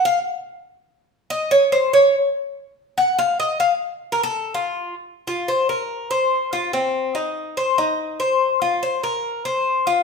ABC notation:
X:1
M:4/4
L:1/16
Q:1/4=144
K:Bbm
V:1 name="Cuban tres"
f2 z8 z2 e2 d2 | c2 d2 z8 g2 f2 | e2 f2 z3 B =A3 F4 z | z2 F2 c2 B4 c4 F2 |
C4 E4 c2 E4 c2- | c2 F2 c2 B4 c4 F2 |]